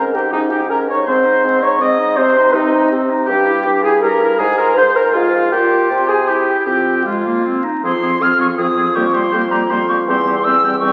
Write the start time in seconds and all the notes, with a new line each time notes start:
Already playing: G#2 C#4 A#4
0.12 D#4 G4 G5
0.31 G#2 C#4 D#4 D#5
0.50 D#4 G4 G5
0.69 G#2 C#4 A#4 A#5
0.88 D#4 C#5 C#6
1.06 G#2 C4 C5 C6
1.25 D#4
1.44 G#2 C4
1.62 D#4 C#5 C#6
1.81 G#2 C4 D#5 D#6
1.99 D#4
2.16 C3 C4 C5 C6
2.37 D#4
2.53 C3 C4 D#4 D#5
2.73 D#4
2.92 C3 C4
3.10 D#4
3.26 G2 G4 G5
3.46 E4
3.64 G2 G4
3.83 E4 G#4 G#5
4.01 G2 G4 A#4 A#5
4.21 E4
4.38 G#2 G#4 G#5
4.58 F4 A#4 A#5
4.76 G#2 G#4 C5 C6
4.96 F4 A#4 A#5
5.13 G#2 F4 G#4 F5
5.33 F4
5.52 A#2 F4 G4 G5
5.90 C3 F4
6.08 G#4 G#5
6.27 E4 G4 G5
6.66 F2 C4 G4 G5
7.04 G#3 F4 F5
7.25 A#3
7.45 C4
7.64 D#4
7.83 F2 F3 C4 G#4 C6
8.02 F3 C4 G#4
8.20 F2 F3 C4 G#4 F6
8.39 F3 C4 G#4 C#6
8.58 F2 F3 C4 G#4 D#6
8.77 F3 C4 G#4
8.95 F2 G3 A#3 G4 C#6
9.13 G3 A#3 G4 C6
9.32 F2 G3 A#3 G4
9.51 G3 A#3 G4 A#5
9.70 F2 G3 A#3 G4 C6
9.88 G3 A#3 G4 C#6
10.07 E2 G3 C4 G4 C6
10.25 G3 C4 G4
10.44 E2 G3 C4 G4 E6
10.63 G3 C4 G4
10.80 E2 G3 C4 G4 C#6